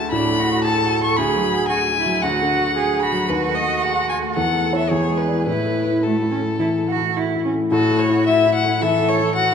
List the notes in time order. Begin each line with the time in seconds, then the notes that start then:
Already playing: D2 A3 F#4 G#4 A5
0.11 A2 D4 B5
0.30 A3
0.39 F#4
0.47 F#4
0.64 G#4 A4 A5
0.83 F#4
1.00 A3
1.04 C#6
1.17 D2 G#4 B5
1.36 F#3
1.53 F#4
1.68 F#4 G#4 G#5
1.88 F#4
1.96 E4
2.06 F#3
2.22 D2 F#4 F#5
2.41 D3
2.58 F#4
2.76 G#4
2.94 F#4
3.02 F#4 B5
3.12 F#3
3.29 D#2 B4
3.48 A3
3.55 D#5
3.66 F#4
3.83 G#4 F#5
4.01 F#4
4.09 G#5
4.18 A3
4.36 E2 A4 F#5
4.54 A3
4.73 E4 C#5
4.78 E5
4.90 E2 G#4 C#5
5.10 G#3
5.17 B4
5.28 E4 D5
5.47 A2 E4 B4
5.66 A3
5.85 E4
6.04 A3 F#4 A4
6.22 E4
6.31 C#4
6.41 A3
6.59 E3 E4
6.79 A3
6.88 F#4
6.97 E4
7.16 E4 F#4
7.35 E4
7.45 C#4
7.54 A3
7.72 A2 F#4 A4
7.91 A3
7.99 C#5
8.09 E4
8.27 E4 F#4 E5
8.46 E4
8.55 F#5
8.64 A3
8.82 E3 A4 E5
9.00 A3
9.08 C#5
9.18 E4
9.35 F#4 F#5